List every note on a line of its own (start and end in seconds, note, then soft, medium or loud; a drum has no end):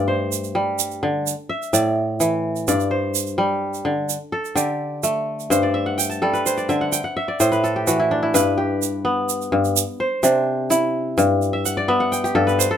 0.00 1.32 G2 medium
0.00 1.36 A3 medium
0.00 0.31 G4 medium
0.00 0.95 D5 medium
0.08 1.26 C5 medium
0.32 shaker medium
0.44 shaker soft
0.55 1.08 G3 medium
0.79 shaker medium
0.91 shaker soft
1.03 1.32 D3 medium
1.27 shaker medium
1.49 2.53 E5 medium
1.63 shaker soft
1.73 2.73 A2 medium
1.73 2.68 D5 medium
1.73 shaker medium
2.20 2.73 E3 medium
2.20 shaker medium
2.56 shaker soft
2.68 4.15 G2 medium
2.68 3.79 D5 medium
2.68 shaker medium
2.80 shaker soft
2.91 4.10 C5 medium
3.15 shaker medium
3.27 shaker soft
3.38 3.91 G3 medium
3.74 shaker soft
3.85 4.15 D3 medium
4.09 shaker medium
4.32 5.64 A4 medium
4.45 shaker soft
4.55 5.57 D3 medium
4.55 5.92 G4 medium
4.55 shaker medium
5.03 7.03 A3 medium
5.03 shaker medium
5.40 shaker soft
5.50 6.98 G2 medium
5.50 6.39 C5 medium
5.50 shaker medium
5.63 6.57 D5 medium
5.74 6.69 E5 medium
5.86 6.28 F#5 medium
5.98 6.87 G5 medium
5.98 shaker medium
6.10 6.97 A5 medium
6.10 shaker soft
6.22 6.75 G3 medium
6.22 7.54 A4 medium
6.33 7.46 B4 medium
6.33 shaker soft
6.46 7.40 C5 medium
6.46 shaker medium
6.58 7.28 D5 medium
6.58 shaker soft
6.69 6.98 D3 medium
6.69 7.16 E5 medium
6.69 shaker soft
6.81 7.04 F#5 medium
6.92 7.85 G5 medium
6.92 shaker medium
7.04 7.82 F#5 medium
7.17 8.20 E5 medium
7.28 8.39 D5 medium
7.40 8.40 A2 medium
7.40 8.41 C5 medium
7.40 shaker medium
7.52 8.34 B4 medium
7.52 shaker soft
7.64 8.95 A4 medium
7.64 shaker soft
7.76 8.57 G4 medium
7.87 8.40 E3 medium
7.87 8.40 F#4 medium
7.87 shaker medium
8.00 8.22 E4 medium
8.11 9.79 D4 medium
8.23 9.79 E4 medium
8.34 9.51 G2 medium
8.34 9.58 B4 medium
8.34 shaker medium
8.58 9.99 G4 medium
8.82 shaker medium
9.05 10.06 B3 medium
9.29 shaker medium
9.42 shaker soft
9.52 9.82 G2 medium
9.65 shaker soft
9.77 shaker medium
10.00 11.19 C5 medium
10.23 11.24 C3 medium
10.23 11.91 D4 medium
10.23 shaker medium
10.70 12.27 E4 medium
10.70 shaker medium
11.18 12.34 G2 medium
11.18 shaker medium
11.42 shaker soft
11.53 11.88 E5 medium
11.65 12.00 F#5 medium
11.65 shaker medium
11.77 12.77 D5 medium
11.88 12.65 B3 medium
11.88 12.77 E5 medium
12.00 12.30 F#5 medium
12.12 12.77 G5 medium
12.12 shaker medium
12.24 12.77 G4 medium
12.24 shaker soft
12.35 12.65 G2 medium
12.35 12.70 A4 medium
12.47 12.77 B4 medium
12.47 shaker soft
12.59 12.77 C5 medium
12.59 shaker medium
12.71 12.77 A4 medium